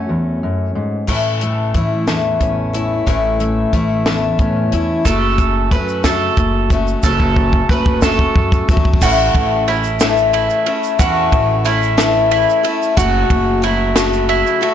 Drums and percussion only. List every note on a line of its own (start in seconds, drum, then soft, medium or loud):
1.08 kick soft
1.08 crash medium
1.41 closed hi-hat medium
1.74 kick soft
1.74 closed hi-hat medium
2.08 snare medium
2.08 closed hi-hat medium
2.41 kick medium
2.41 closed hi-hat medium
2.74 closed hi-hat medium
3.07 kick medium
3.07 closed hi-hat medium
3.40 closed hi-hat medium
3.73 kick medium
3.73 closed hi-hat medium
4.06 snare loud
4.06 closed hi-hat medium
4.39 kick medium
4.39 closed hi-hat medium
4.72 closed hi-hat medium
5.05 kick medium
5.05 closed hi-hat medium
5.05 shaker medium
5.38 kick medium
5.38 closed hi-hat medium
5.38 shaker soft
5.71 kick medium
5.71 closed hi-hat medium
5.88 shaker soft
6.04 kick medium
6.04 snare loud
6.04 closed hi-hat medium
6.04 shaker medium
6.37 kick medium
6.37 closed hi-hat medium
6.70 kick loud
6.70 closed hi-hat medium
6.70 shaker soft
6.88 shaker soft
7.03 kick loud
7.03 shaker medium
7.20 kick medium
7.36 kick loud
7.53 kick medium
7.69 kick loud
7.86 kick loud
8.02 kick loud
8.02 snare loud
8.02 shaker medium
8.19 kick loud
8.36 kick loud
8.52 kick loud
8.52 shaker soft
8.69 kick loud
8.69 shaker soft
8.77 kick loud
8.85 kick loud
8.94 kick loud
9.02 kick loud
9.02 crash loud
9.02 shaker loud
9.35 kick medium
9.35 ride medium
9.68 ride medium
9.84 shaker soft
10.00 snare loud
10.00 ride medium
10.00 shaker loud
10.17 shaker soft
10.34 ride medium
10.50 shaker soft
10.66 ride medium
10.83 shaker soft
10.99 kick loud
10.99 ride medium
10.99 shaker medium
11.32 kick medium
11.32 ride medium
11.66 ride medium
11.83 shaker soft
11.98 snare loud
11.98 ride medium
11.98 shaker loud
12.31 ride medium
12.49 shaker soft
12.64 ride medium
12.82 shaker soft
12.97 kick loud
12.97 ride medium
12.97 shaker loud
13.30 kick medium
13.30 ride medium
13.63 ride medium
13.96 snare loud
13.96 ride medium
13.96 shaker loud
14.13 shaker soft
14.29 ride medium
14.46 shaker soft
14.63 ride medium